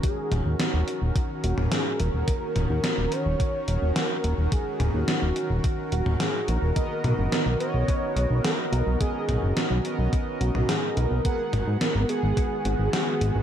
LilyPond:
<<
  \new Staff \with { instrumentName = "Analog polysynth" } { \time 4/4 \key ees \minor \tempo 4 = 107 r1 | r1 | r1 | <b ais' dis''>4. <b ais' dis''>2~ <b ais' dis''>8 |
<b ais' dis''>4. <b ais' dis''>2~ <b ais' dis''>8 | <ces' aes' ges''>4. <ces' aes' ges''>2~ <ces' aes' ges''>8 | }
  \new Staff \with { instrumentName = "Analog synth lead" } { \time 4/4 \key ees \minor aes'4 ges'4 r8 ges'8 aes'8 bes'8~ | bes'4 bes'8 des''4. bes'8.~ bes'32 bes'32 | aes'4 ges'4 r8 ges'8 aes'8 bes'8~ | bes'4 ais'8 des''4. ais'4 |
aes'4 fis'4 r8 fis'8 aes'8 ais'8~ | ais'4 bes'8 aes'4. aes'4 | }
  \new Staff \with { instrumentName = "Supersaw synth" } { \time 4/4 \key ees \minor << { <ees ges' bes'>1~ | <ees ges' bes'>1~ | <ees ges' bes'>1~ | <ees ges' bes'>1~ |
<ees ges' bes'>1 | <ees aes ges'>1 | } \\ { des'1~ | des'1~ | des'1 | b1 |
des'1 | ces'1 | } >> }
  \new Staff \with { instrumentName = "Analog synth bass" } { \clef bass \time 4/4 \key ees \minor r8 ees,,16 ees,16 r16 ees,,16 r16 ees,,16 r8 ees,,16 ees,,16 r8 ees,,16 ees,,16 | r8 ees,,16 ees,16 r16 ees,,16 r16 ees,,16 r8 ees,,16 ees,,16 r8 ees,,16 ees,,16 | r8 ees,,16 ees,16 r16 ees,,16 r16 ees,,16 r8 ees,,16 ees,,16 r8 bes,,16 ees,,16 | r8 b,,16 fis,,16 r16 b,,16 r16 b,,16 r8 b,,16 b,,16 r8 b,,16 b,,16 |
r8 b,,16 fis,,16 r16 b,,16 r16 b,,16 r8 b,,16 b,,16 r8 b,,16 b,,16 | r8 aes,,16 aes,16 r16 aes,,16 r16 aes,,16 r8 aes,,16 aes,,16 r8 aes,,16 aes,,16 | }
  \new DrumStaff \with { instrumentName = "Drums" } \drummode { \time 4/4 <hh bd>8 <hh toml>8 <hh sn>8 hh8 <hh bd>8 hh16 toml16 <hh sn>8 hh8 | <hh bd>8 <hh toml>8 <hh sn>8 hh8 <hh bd>8 hh8 <hh sn>8 hh8 | <hh bd>8 <hh toml>8 <hh sn>8 hh8 <hh bd>8 hh16 toml16 <hh sn>8 hh8 | <hh bd>8 <hh toml>8 <hh sn>8 hh8 <hh bd>8 hh8 <hh sn>8 hh8 |
<hh bd>8 <hh toml>8 <hh sn>8 hh8 <hh bd>8 hh16 toml16 <hh sn>8 hh8 | <hh bd>8 <hh toml>8 <hh sn>8 hh8 <hh bd>8 hh8 <hh sn>8 hh8 | }
>>